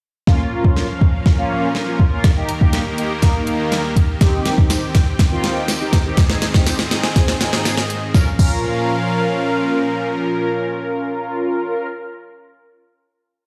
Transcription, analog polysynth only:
0.27 0.86 A#3 medium
0.27 0.86 C#4 medium
0.27 0.86 F4 loud
1.38 1.67 A#3 loud
1.38 1.68 C#4 medium
1.38 1.68 F4 loud
1.88 2.02 A#3 medium
1.88 2.02 C#4 medium
1.88 2.02 F4 medium
2.12 2.24 A#3 medium
2.12 2.24 C#4 medium
2.12 2.25 F4 loud
2.36 2.50 A#3 medium
2.36 2.51 D#4 medium
2.36 2.51 G4 medium
2.61 2.83 A#3 medium
2.61 2.83 D#4 medium
2.61 2.83 G4 loud
2.98 3.12 A#3 medium
2.98 3.12 D#4 medium
2.98 3.13 G4 loud
3.23 3.81 A#3 loud
3.23 3.82 D#4 medium
3.23 3.82 A#4 loud
4.21 4.80 D#3 loud
4.21 4.80 C4 medium
4.21 4.80 D#4 medium
4.21 4.80 G4 loud
5.32 5.61 D#3 loud
5.32 5.61 C4 medium
5.32 5.61 D#4 medium
5.32 5.61 F4 loud
5.81 5.95 D#3 medium
5.81 5.95 C4 medium
5.81 5.95 D#4 medium
5.81 5.95 G4 loud
6.05 6.18 D#3 medium
6.05 6.18 C4 medium
6.05 6.18 D#4 medium
6.05 6.18 G4 loud
6.30 6.44 C4 medium
6.30 6.44 D#4 medium
6.30 6.44 G#4 medium
6.54 6.77 C4 loud
6.54 6.77 D#4 medium
6.54 6.77 G4 loud
6.91 7.05 C4 medium
6.91 7.06 D#4 medium
6.91 7.06 G#4 loud
7.16 7.75 C4 loud
7.16 7.75 D#4 medium
7.16 7.75 G#4 loud
8.15 8.28 C#4 medium
8.15 8.28 F4 medium
8.15 8.28 A#4 medium
8.39 11.87 C#4 medium
8.39 11.87 F4 medium
8.39 11.87 A#4 medium

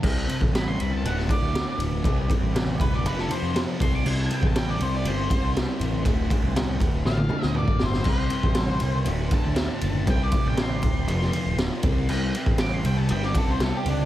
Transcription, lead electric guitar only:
0.56 0.67 B5 loud
0.67 0.81 C6 medium
0.81 0.93 B5 medium
0.93 1.04 A5 medium
1.07 1.18 F#5 medium
1.18 1.30 A5 medium
1.30 1.78 D5 loud
2.81 2.93 B4 medium
2.96 3.06 D5 medium
3.07 3.18 B4 medium
3.20 3.31 A4 medium
3.31 3.55 C5 loud
3.82 3.93 C6 loud
3.95 4.06 D6 loud
4.07 4.18 C6 medium
4.21 4.34 A5 medium
4.34 4.44 G5 medium
4.47 4.57 A5 medium
4.58 4.69 G5 loud
4.70 4.82 D5 loud
4.82 4.95 C5 medium
4.95 5.07 D5 loud
5.07 5.55 C5 loud
7.07 7.44 F5 loud
7.44 7.55 D#5 loud
7.57 7.81 D5 medium
7.84 8.07 C5 medium
8.09 9.06 C5 loud
9.34 10.06 A5 loud
10.10 10.21 G5 loud
10.23 10.46 D5 loud
10.47 10.59 G5 loud
10.62 11.58 C6 loud
12.61 12.74 D6 loud
12.74 12.85 C6 loud
12.86 12.98 G5 medium
12.98 13.10 A5 medium
13.12 13.23 G5 loud
13.25 13.36 D5 medium
13.38 13.51 A4 loud
13.51 13.62 C5 loud
13.64 13.77 A4 loud
13.77 13.87 G4 medium
13.89 14.05 D4 loud

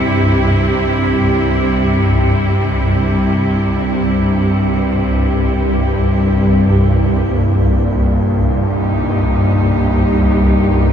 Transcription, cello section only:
0.00 7.31 C3 medium
0.00 7.31 G3 medium
0.00 7.31 E4 medium
0.00 7.30 G4 medium
7.31 10.93 A#2 medium
8.55 10.93 G4 medium
8.72 10.93 D#4 medium
8.77 10.93 G3 medium

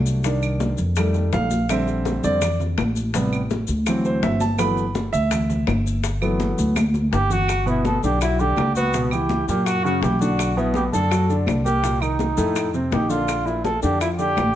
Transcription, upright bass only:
0.00 0.73 C2 medium
0.78 1.29 F2 loud
1.33 2.18 A#1 loud
2.23 2.74 F2 medium
2.78 3.62 A1 medium
3.68 4.19 D2 medium
4.22 5.07 G1 medium
5.13 5.64 D2 medium
5.68 6.52 G1 loud
6.58 7.09 D2 loud
7.13 7.97 G1 medium
8.03 8.54 B1 medium
8.57 9.42 C#2 medium
9.48 9.98 F#2 medium
10.02 10.87 B1 medium
10.93 11.44 F#2 medium
11.47 12.32 C2 medium
12.37 12.88 F2 medium
12.92 13.77 A#1 medium
13.83 14.34 F2 medium
14.38 14.55 A1 medium

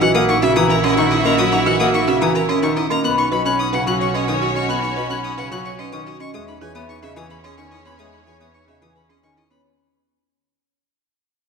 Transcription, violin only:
0.01 0.11 F#5 loud
0.15 0.25 D#6 medium
0.29 0.39 C#6 loud
0.42 0.53 E5 loud
0.56 0.66 D#6 medium
0.70 0.80 A#5 loud
0.83 0.94 D#5 loud
0.97 1.08 C#6 medium
1.11 1.21 D#5 loud
1.25 1.35 A#5 loud
1.38 1.49 D#6 medium
1.52 1.63 A#5 loud
1.66 1.77 F#5 loud
1.80 1.90 D#6 loud
1.94 2.04 C#6 medium
2.07 2.18 E5 loud
2.22 2.32 D#6 medium
2.35 2.46 A#5 medium
2.49 2.59 D#5 loud
2.62 2.73 C#6 medium
2.76 2.87 D#5 loud
2.90 3.01 A#5 loud
3.04 3.15 F#6 medium
3.18 3.28 C#6 medium
3.32 3.42 B5 loud
3.46 3.56 F#6 medium
3.59 3.69 D#6 medium
3.73 3.83 F#5 loud
3.87 3.97 F#6 medium
4.01 4.11 C#6 medium
4.14 4.25 D#5 loud
4.28 4.38 D#6 medium
4.42 4.52 D#5 medium
4.56 4.66 C#6 loud
4.69 4.80 F#6 medium
4.83 4.93 C#6 medium
4.97 5.07 B5 loud
5.10 5.21 F#6 medium
5.24 5.35 D#6 medium
5.38 5.48 F#5 loud
5.52 5.62 F#6 medium
5.65 5.76 C#6 medium
5.79 5.89 D#5 loud
5.92 6.03 D#6 medium
6.06 6.17 D#5 medium
6.20 6.31 C#6 loud
6.34 6.44 D#6 medium
6.48 6.58 B5 medium
6.61 6.72 G#5 loud
6.75 6.86 D#6 medium
6.89 7.00 C#6 loud
7.03 7.13 E5 loud
7.16 7.27 D#6 loud
7.30 7.41 B5 loud
7.44 7.54 D#5 loud
7.58 7.68 C#6 medium
7.71 7.82 D#5 loud
7.85 7.96 B5 loud
7.99 8.09 D#6 medium
8.13 8.23 B5 medium
8.26 8.37 G#5 loud
8.40 8.51 D#6 medium
8.54 8.65 C#6 medium
8.68 8.78 E5 loud
8.82 8.92 D#6 medium
8.96 9.06 B5 medium
9.10 9.20 D#5 medium
9.23 9.34 C#6 medium
9.37 9.47 D#5 medium
9.50 9.61 B5 loud

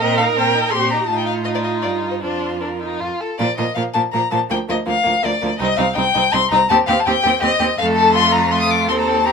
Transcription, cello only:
0.00 0.32 A#2 medium
0.36 0.69 A#2 medium
0.72 1.05 A#2 medium
1.09 1.85 A2 medium
1.84 2.25 G2 medium
2.23 3.00 F2 medium
3.01 3.09 F2 medium
3.39 3.47 A#2 medium
3.58 3.66 A#2 medium
3.76 3.84 A#2 medium
3.95 4.02 A#2 medium
4.14 4.21 A#2 medium
4.32 4.39 A#2 medium
4.50 4.58 D2 medium
4.69 4.76 D2 medium
4.87 4.95 D2 medium
5.06 5.13 D2 medium
5.24 5.32 D2 medium
5.42 5.49 D2 medium
5.61 5.68 C2 loud
5.78 5.86 C2 medium
5.96 6.04 C2 medium
6.15 6.22 C2 medium
6.33 6.40 C2 medium
6.51 6.58 C2 medium
6.70 6.77 D#2 loud
6.88 6.95 D#2 medium
7.07 7.14 D#2 medium
7.25 7.32 D#2 medium
7.42 7.50 D#2 medium
7.60 7.67 D#2 medium
7.79 8.90 F2 medium
8.88 9.32 D#2 medium

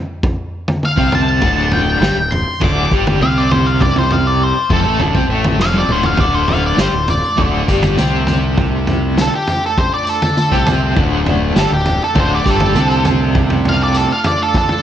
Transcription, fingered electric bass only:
0.97 1.39 C2 loud
1.42 1.98 D1 medium
2.01 2.15 G1 medium
2.15 2.44 D1 medium
2.62 2.89 D1 medium
2.92 3.19 G1 medium
3.21 4.51 C2 medium
4.70 4.84 F1 medium
4.85 4.99 A1 loud
5.00 5.14 D1 medium
5.15 5.28 C2 medium
5.29 5.57 A1 medium
5.58 5.87 F1 medium
5.88 6.17 D1 medium
6.18 6.74 D1 medium
6.78 6.92 G1 medium
6.93 7.21 D1 medium
7.38 7.66 D1 medium
7.68 7.96 G1 medium
7.98 9.28 C2 medium
10.52 10.93 C2 medium
10.96 11.52 D1 loud
11.56 11.70 G1 medium
11.71 11.99 D1 medium
12.16 12.43 D1 medium
12.46 12.73 G1 medium
12.75 14.05 C2 medium

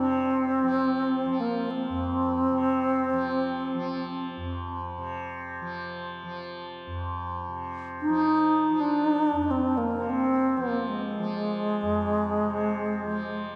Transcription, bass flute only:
0.00 1.42 C4 medium
1.40 1.72 A#3 medium
1.71 4.36 C4 medium
8.02 8.82 D#4 medium
8.80 9.52 D4 medium
9.51 9.79 C4 medium
9.78 10.12 A#3 medium
10.10 10.59 C4 medium
10.57 10.90 A#3 medium
10.89 13.56 G#3 medium

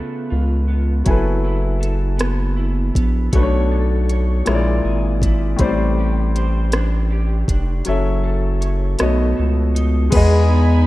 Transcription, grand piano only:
0.00 1.02 C#3 medium
0.00 1.02 A3 medium
0.00 1.04 F4 medium
0.00 1.05 B4 medium
0.00 1.03 E5 medium
1.04 3.28 F#3 medium
1.04 3.28 E4 medium
1.04 3.29 G#5 medium
1.09 3.30 A4 medium
1.09 3.31 B4 medium
3.33 4.46 B2 medium
3.33 4.46 A3 medium
3.33 4.47 D4 medium
3.33 3.41 B4 medium
3.43 4.47 C#5 medium
4.45 5.59 A#2 medium
4.45 5.59 G#3 medium
4.45 5.60 E4 medium
4.45 4.54 C#5 medium
4.55 5.61 D5 medium
5.56 7.80 A2 medium
5.56 7.81 G3 medium
5.56 7.82 C4 medium
5.61 7.83 C5 medium
5.61 7.83 D5 medium
7.85 8.99 F#3 medium
7.85 8.99 C#4 medium
7.85 9.00 A4 medium
7.85 9.00 E5 medium
8.99 10.12 B2 medium
8.99 10.12 A3 medium
8.99 10.13 C#5 medium
8.99 10.14 D#5 medium
10.10 10.87 G#3 medium
10.10 10.87 B3 medium
10.15 10.87 G#4 medium
10.15 10.87 D#5 medium

